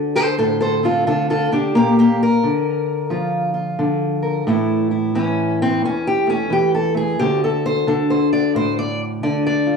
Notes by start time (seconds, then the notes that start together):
Already playing: D2 D3 A4
0.15 A4 C5
0.38 A2 A4 C5
0.60 A4 C5
0.83 C4 F4 A4
1.07 D3 F4 A4
1.30 F4 A4
1.52 D3 D4 G4
1.75 A#2 A#3 G4
1.99 A#3 G4
2.23 A#4
2.43 D3
3.10 F3 F4
3.54 F4
3.79 D3
4.23 A#4
4.47 A2 E3 A3 E4
4.91 E4
5.15 E3 C#4
5.62 C4
5.82 E2 C#4
6.07 G4
6.27 A3 C#4
6.50 E3 G4
6.75 A4
6.94 A3 G#4
7.19 D2 D3 D4 G4
7.44 A4
7.66 C5
7.87 D3 A4
8.10 C5
8.33 D5
8.55 A2 C5
8.79 D5
9.23 D3 D5
9.46 D5
9.66 F4